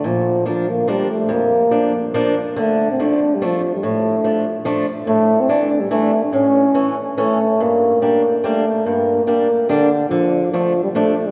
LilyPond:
<<
  \new Staff \with { instrumentName = "Euphonium" } { \time 3/4 \key d \minor \tempo 4 = 143 f4 f8 bes8 g8 a8 | bes2 r4 | a8. c'16 d'8. g16 f8. g16 | a4. r4. |
a8. c'16 d'8. g16 a8. d'16 | cis'4. r8 a4 | bes4 \tuplet 3/2 { bes4~ bes16 bes16 } a4 | bes4 bes4 d4 |
f4 f8. g16 a8. g16 | }
  \new Staff \with { instrumentName = "Steel-string acoustic guitar" } { \time 3/4 \key d \minor bes,4 <f bes d'>8 r8 <f bes d'>8 r8 | f,4 <f bes d'>8 r8 <f bes d'>8 r8 | d4 <f a d'>8 r8 <f a d'>8 r8 | a,4 <f a d'>8 r8 <f a d'>8 r8 |
a,4 <e a d'>8 r8 <e a d'>8 r8 | a,4 <e a cis'>8 r8 <e a cis'>8 r8 | g,4 <g bes d'>8 r8 <g bes d'>8 r8 | g,4 <g bes d'>8 r8 <g bes d'>8 r8 |
d4 <f a d'>8 r8 <f a d'>8 r8 | }
>>